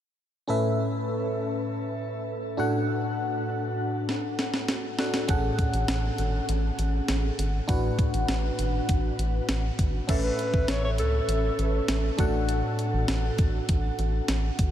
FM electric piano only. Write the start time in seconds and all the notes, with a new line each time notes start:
0.47 A2 C#4 A4 B4 E5
2.57 A2 D4 F#4 A4 F#5
4.98 D4 F#4 A4 F#5
5.28 A2 C#4 G#4 A4 F#5
7.68 A2 D4 F#4 B4 F#5
10.07 A2 C#4 A4 B4 E5
12.18 A2 D4 F#4 A4 F#5